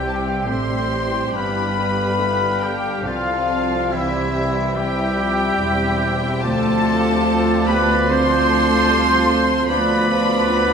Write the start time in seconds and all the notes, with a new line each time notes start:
Already playing: C2 C3 E3 G3 C4 G4 E5 G5
0.00 G4
0.07 A5
0.16 G5
0.27 F5
0.35 G5
0.44 A1 A2 D3 C4 C5 C6
0.91 E3
1.34 G1 G2 E3 G3 D4 B4 F5 B5
1.38 B3
1.78 D3
2.19 D3 B3 E4 G4
2.61 G3 D4 G4 G5
3.04 C2 E3 F3 G3 C4 F4 A4 F5
3.47 F3
3.90 E3 G3 C4 E4 G4 E5
4.32 G3
4.75 E3 G3 E4 G4 G5
4.79 G5
5.17 F3
5.57 E1 E2 G3 E4
6.00 E3
6.41 D2 F3 A3 F4 A4 D5 A5
7.23 F4 G4
7.66 B3 A4 B4 B5
8.07 F3 A3 C4 F4 A4 C5 C6
8.49 F3
8.89 G3
9.30 A3
9.68 D2 F3 B3 D4 F4 B4 D5 B5
10.11 D4
10.50 B3 D4